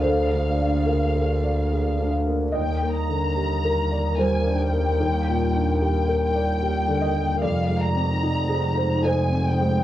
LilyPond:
<<
  \new Staff \with { instrumentName = "Violin section" } { \time 3/4 \key ees \major \tempo 4 = 73 f''2~ f''8 r8 | g''8 bes''4. aes''8 g''8~ | g''4 g''2 | f''8 bes''4. aes''8 g''8 | }
  \new Staff \with { instrumentName = "Analog synth pad" } { \time 3/4 \key ees \major <bes aes' d''>2. | <g bes bes'>2.~ | <g bes bes'>2. | <aes ees' c''>2. | }
  \new Staff \with { instrumentName = "Felt piano" } { \time 3/4 \key ees \major << { c''4 bes'4 r8 f''8 | ees''2 c''4 | bes'2 r8 ees''8 | d''2 c''4 | } \\ { \tuplet 3/2 { <d, bes>8 d8 d'8 aes'8 bes'8 d''8 aes'8 d'8 bes8 } | \tuplet 3/2 { ees,8 bes8 d8 g'8 bes'8 d''8 g8 d'8 bes8 } | \tuplet 3/2 { ees,8 bes,8 d'8 g'8 bes'8 d''8 g'8 d8 bes8 } | \tuplet 3/2 { f,8 aes8 c'8 ees'8 aes'8 c''8 ees'8 c'8 aes8 } | } >> }
  \new Staff \with { instrumentName = "Double bass" } { \clef bass \time 3/4 \key ees \major d,2. | ees,2.~ | ees,2. | f,,2. | }
>>